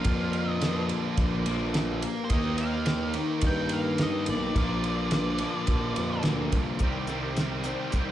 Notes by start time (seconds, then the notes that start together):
Already playing: A#2 D3 F3 A#3 D4 F4 G4 D5 F5
0.04 F2, kick, ride
0.33 ride
0.52 D#5
0.61 A#2 F3 A#3, snare, ride
0.89 ride
1.17 A#1, kick, ride
1.46 A#2 F3 A#3, ride
1.74 snare, ride
2.02 ride
2.24 C5
2.30 D#2 D#3 A#3 D#4 G4 D#5, kick, ride
2.34 G4
2.58 F5, ride
2.86 snare, ride
3.14 D#3 A#3 D#4, ride
3.41 G2, kick, ride
3.47 G5
3.69 F5, ride
3.98 D#3 A#3 D#4, snare, ride
4.03 D#5
4.26 B1 D5, ride
4.55 A#1 A#2 D3 F3 A#3 D4 F4 G4 D5, kick, ride
4.59 F4
4.84 ride
5.11 snare, ride
5.38 A#2 F3 A#3, ride
5.67 A#1, kick, ride
5.96 F2, ride
6.23 D2 A#2 F3 A#3, snare, ride
6.52 C2, kick, ride
6.79 C2 C3 D#3 G3 C4, kick, closed hi-hat
6.83 D#3 G4
7.07 C3 G3 C4 A4, closed hi-hat
7.12 D#3 G4 A#4
7.24 G4
7.36 C3 D#3 G3 C4 A#4, snare, closed hi-hat
7.41 G4
7.64 C3 D#3 G3 C4 G4 C5, closed hi-hat
7.92 C2 C3 D#3 G3 C4 G4, kick, closed hi-hat